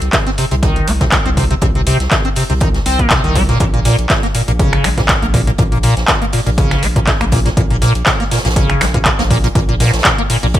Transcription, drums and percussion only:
0.01 closed hi-hat soft
0.13 kick loud
0.13 snare loud
0.13 clap loud
0.13 closed hi-hat medium
0.26 snare soft
0.26 closed hi-hat soft
0.38 closed hi-hat medium
0.38 open hi-hat loud
0.51 closed hi-hat soft
0.63 kick loud
0.63 closed hi-hat medium
0.76 closed hi-hat soft
0.87 closed hi-hat medium
0.87 open hi-hat loud
1.00 kick medium
1.00 snare soft
1.00 closed hi-hat medium
1.12 kick loud
1.12 snare loud
1.12 clap loud
1.12 closed hi-hat medium
1.26 closed hi-hat soft
1.37 kick medium
1.37 closed hi-hat medium
1.37 open hi-hat loud
1.51 closed hi-hat soft
1.61 kick loud
1.61 closed hi-hat medium
1.75 closed hi-hat soft
1.87 closed hi-hat medium
1.87 open hi-hat loud
2.00 snare soft
2.00 closed hi-hat medium
2.11 kick loud
2.11 snare loud
2.11 clap loud
2.11 closed hi-hat medium
2.25 closed hi-hat soft
2.35 open hi-hat medium
2.35 open hi-hat loud
2.50 closed hi-hat soft
2.60 kick loud
2.60 closed hi-hat medium
2.74 snare soft
2.74 closed hi-hat soft
2.86 closed hi-hat medium
2.86 open hi-hat loud
2.99 kick medium
2.99 closed hi-hat medium
3.10 kick loud
3.10 snare loud
3.10 clap loud
3.10 closed hi-hat medium
3.24 closed hi-hat soft
3.35 kick medium
3.35 closed hi-hat medium
3.35 open hi-hat loud
3.49 snare soft
3.49 closed hi-hat soft
3.60 kick loud
3.60 closed hi-hat medium
3.74 closed hi-hat soft
3.85 snare medium
3.85 closed hi-hat medium
3.85 open hi-hat loud
3.98 closed hi-hat soft
3.98 closed hi-hat medium
4.09 kick loud
4.09 snare loud
4.09 clap loud
4.09 closed hi-hat medium
4.23 snare soft
4.23 closed hi-hat soft
4.34 closed hi-hat medium
4.34 open hi-hat loud
4.48 closed hi-hat soft
4.59 kick loud
4.59 closed hi-hat medium
4.73 finger snap medium
4.73 closed hi-hat soft
4.84 finger snap medium
4.84 closed hi-hat medium
4.84 open hi-hat loud
4.98 kick medium
4.98 snare soft
4.98 closed hi-hat soft
5.09 kick loud
5.09 snare loud
5.09 clap loud
5.09 closed hi-hat medium
5.23 closed hi-hat soft
5.34 kick medium
5.34 closed hi-hat medium
5.34 open hi-hat loud
5.47 closed hi-hat soft
5.58 kick loud
5.58 closed hi-hat medium
5.72 closed hi-hat soft
5.83 closed hi-hat medium
5.83 open hi-hat loud
5.97 snare soft
5.97 closed hi-hat soft
6.08 kick loud
6.08 snare loud
6.08 clap loud
6.08 closed hi-hat medium
6.22 closed hi-hat soft
6.32 open hi-hat medium
6.32 open hi-hat loud
6.47 closed hi-hat medium
6.58 kick loud
6.58 closed hi-hat medium
6.58 closed hi-hat loud
6.71 finger snap medium
6.71 snare medium
6.71 closed hi-hat soft
6.83 closed hi-hat medium
6.83 open hi-hat medium
6.96 kick medium
6.96 closed hi-hat medium
7.07 kick loud
7.07 snare loud
7.07 clap loud
7.07 closed hi-hat medium
7.21 finger snap medium
7.21 closed hi-hat soft
7.32 kick medium
7.32 closed hi-hat medium
7.32 open hi-hat loud
7.46 snare soft
7.46 closed hi-hat soft
7.57 kick loud
7.57 closed hi-hat medium
7.70 closed hi-hat soft
7.81 snare medium
7.81 closed hi-hat medium
7.81 open hi-hat loud
7.95 closed hi-hat medium
7.95 closed hi-hat soft
8.06 kick loud
8.06 snare loud
8.06 clap loud
8.06 closed hi-hat medium
8.20 snare soft
8.20 closed hi-hat soft
8.31 snare medium
8.31 closed hi-hat medium
8.31 open hi-hat loud
8.37 snare medium
8.37 closed hi-hat medium
8.45 snare medium
8.45 closed hi-hat soft
8.45 closed hi-hat medium
8.50 snare loud
8.50 closed hi-hat medium
8.56 kick loud
8.56 closed hi-hat medium
8.70 finger snap medium
8.70 closed hi-hat soft
8.81 finger snap medium
8.81 snare medium
8.81 closed hi-hat medium
8.81 open hi-hat loud
8.94 kick medium
8.94 closed hi-hat medium
9.05 kick loud
9.05 clap loud
9.05 closed hi-hat medium
9.19 snare loud
9.19 closed hi-hat soft
9.19 closed hi-hat medium
9.30 kick medium
9.30 open hi-hat loud
9.44 closed hi-hat medium
9.55 kick loud
9.55 closed hi-hat medium
9.69 closed hi-hat soft
9.80 snare medium
9.80 closed hi-hat medium
9.80 open hi-hat loud
9.86 snare medium
9.86 closed hi-hat medium
9.93 snare loud
9.93 closed hi-hat medium
9.99 snare medium
9.99 closed hi-hat medium
10.05 kick loud
10.05 snare loud
10.05 clap loud
10.05 closed hi-hat medium
10.18 closed hi-hat soft
10.29 open hi-hat medium
10.29 open hi-hat loud
10.43 closed hi-hat medium
10.54 kick loud
10.54 closed hi-hat medium

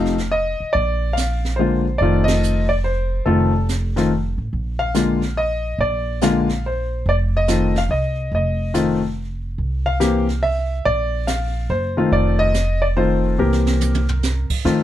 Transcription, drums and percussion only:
0.05 snare soft
0.18 snare soft
0.76 brush sweep soft
1.17 snare medium
1.17 hi-hat pedal medium
1.45 snare soft
2.02 brush sweep soft
2.28 snare medium
2.28 ride medium
2.43 hi-hat pedal medium
3.27 brush sweep soft
3.69 snare medium
3.69 hi-hat pedal soft
3.97 snare soft
4.53 brush sweep soft
4.94 snare medium
4.94 hi-hat pedal medium
5.22 snare soft
5.80 brush sweep soft
6.21 snare medium
6.21 hi-hat pedal soft
6.49 snare soft
7.06 brush sweep soft
7.48 snare medium
7.48 hi-hat pedal medium
7.76 snare soft
8.32 brush sweep soft
8.74 snare medium
8.74 hi-hat pedal soft
9.59 brush sweep soft
10.00 snare medium
10.00 hi-hat pedal soft
10.29 snare soft
10.86 brush sweep soft
11.27 snare medium
11.27 hi-hat pedal medium
12.12 brush sweep soft
12.54 snare medium
12.54 hi-hat pedal soft
13.53 snare soft
13.67 snare medium
13.81 hi-hat pedal soft
13.81 high tom medium
13.95 high tom medium
14.09 floor tom medium
14.23 snare medium
14.23 hi-hat pedal medium
14.50 kick medium
14.50 crash medium
14.65 brush sweep soft
14.65 snare soft

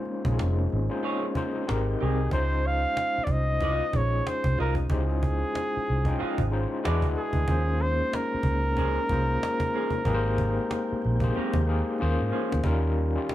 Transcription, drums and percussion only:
0.05 cajon slap soft
0.25 cajon bass loud
0.39 cajon slap medium
0.59 cajon slap soft
0.70 cajon slap soft
0.72 cajon slap soft
0.92 cajon slap soft
1.03 cajon slap soft
1.35 cajon bass medium
1.52 cajon slap soft
1.69 cajon slap loud
2.21 cajon slap soft
2.31 cajon bass loud
2.53 cajon slap soft
2.63 cajon slap soft
2.86 cajon slap soft
2.97 cajon slap medium
3.27 cajon bass medium
3.61 cajon bass medium
3.93 cajon bass medium
4.27 cajon slap loud
4.44 cajon bass medium
4.59 cajon slap soft
4.75 cajon bass medium
4.90 cajon bass loud
5.11 cajon slap soft
5.23 cajon bass medium
5.44 cajon slap soft
5.55 cajon slap medium
5.87 cajon slap soft
6.05 cajon bass medium
6.20 cajon slap soft
6.38 cajon bass medium
6.51 cajon slap soft
6.85 cajon slap loud
7.02 cajon bass medium
7.17 cajon slap soft
7.33 cajon bass medium
7.48 cajon bass loud
7.69 cajon slap soft
7.79 cajon slap soft
8.02 cajon slap soft
8.13 cajon slap medium
8.43 cajon bass medium
8.77 cajon bass medium
9.09 cajon bass medium
9.43 cajon slap loud
9.60 cajon bass loud
9.75 cajon slap soft
9.90 cajon bass medium
10.05 cajon bass loud
10.27 cajon slap soft
10.38 cajon bass medium
10.60 cajon slap soft
10.71 cajon slap medium
11.02 cajon slap soft
11.04 cajon slap soft
11.20 cajon bass medium
11.35 cajon slap soft
11.54 cajon bass loud
11.99 cajon slap soft
12.33 cajon slap soft
12.52 cajon slap medium
12.64 cajon bass loud
12.95 cajon slap soft
13.29 cajon slap medium

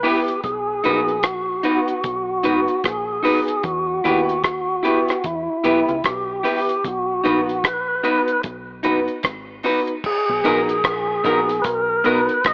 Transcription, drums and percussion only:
0.04 open hi-hat medium
0.28 closed hi-hat medium
0.44 kick loud
0.44 closed hi-hat medium
0.84 closed hi-hat medium
1.08 closed hi-hat soft
1.23 kick loud
1.23 cross-stick loud
1.23 closed hi-hat loud
1.63 closed hi-hat medium
1.88 closed hi-hat medium
2.04 kick loud
2.04 closed hi-hat medium
2.44 closed hi-hat medium
2.68 closed hi-hat soft
2.84 kick loud
2.84 cross-stick loud
2.84 closed hi-hat loud
3.24 open hi-hat medium
3.48 closed hi-hat medium
3.64 kick loud
3.64 closed hi-hat medium
4.05 closed hi-hat medium
4.29 closed hi-hat soft
4.44 kick loud
4.44 cross-stick loud
4.44 closed hi-hat loud
4.85 closed hi-hat medium
5.09 cross-stick medium
5.09 closed hi-hat medium
5.24 kick loud
5.24 closed hi-hat medium
5.64 closed hi-hat medium
5.89 closed hi-hat soft
6.04 kick loud
6.04 cross-stick loud
6.04 closed hi-hat loud
6.44 open hi-hat medium
6.69 closed hi-hat soft
6.84 kick loud
6.84 closed hi-hat medium
7.25 closed hi-hat medium
7.49 closed hi-hat soft
7.64 kick medium
7.64 cross-stick loud
7.64 closed hi-hat medium
8.04 closed hi-hat medium
8.28 closed hi-hat medium
8.43 kick loud
8.43 closed hi-hat medium
8.84 closed hi-hat medium
9.08 closed hi-hat soft
9.23 kick loud
9.23 cross-stick loud
9.23 closed hi-hat medium
9.63 open hi-hat medium
9.87 closed hi-hat medium
10.04 kick loud
10.04 crash loud
10.45 closed hi-hat medium
10.69 closed hi-hat soft
10.84 kick loud
10.84 cross-stick loud
10.84 closed hi-hat loud
11.24 kick medium
11.24 closed hi-hat medium
11.49 closed hi-hat medium
11.64 kick loud
11.64 closed hi-hat loud
12.04 closed hi-hat medium
12.29 closed hi-hat soft
12.44 kick loud
12.44 cross-stick loud
12.44 closed hi-hat medium

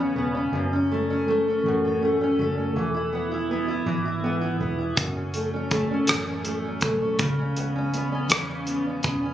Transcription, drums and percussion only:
4.97 kick medium
4.97 closed hi-hat medium
5.34 closed hi-hat soft
5.71 kick medium
5.71 closed hi-hat soft
6.07 cross-stick medium
6.07 closed hi-hat medium
6.45 closed hi-hat soft
6.81 kick medium
6.81 closed hi-hat soft
7.19 kick medium
7.19 closed hi-hat medium
7.57 closed hi-hat soft
7.94 closed hi-hat soft
8.30 cross-stick medium
8.30 closed hi-hat medium
8.67 closed hi-hat soft
9.03 kick medium
9.03 closed hi-hat soft

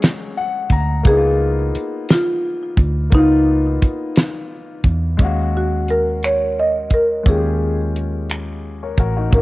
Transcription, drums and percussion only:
0.02 snare loud
0.02 closed hi-hat medium
0.70 kick medium
0.70 closed hi-hat medium
1.05 kick loud
1.05 closed hi-hat medium
1.75 closed hi-hat medium
2.09 snare loud
2.09 closed hi-hat medium
2.77 kick medium
2.77 closed hi-hat medium
3.12 kick loud
3.12 closed hi-hat medium
3.82 kick medium
3.82 closed hi-hat medium
4.16 snare loud
4.16 closed hi-hat medium
4.84 kick medium
4.84 closed hi-hat medium
5.19 kick loud
5.19 closed hi-hat medium
5.88 closed hi-hat medium
6.23 finger snap loud
6.23 closed hi-hat medium
6.90 kick medium
6.90 closed hi-hat medium
7.26 kick loud
7.26 closed hi-hat medium
7.96 closed hi-hat medium
8.30 finger snap loud
8.30 closed hi-hat medium
8.97 kick medium
8.97 closed hi-hat medium
9.32 kick loud
9.32 closed hi-hat medium

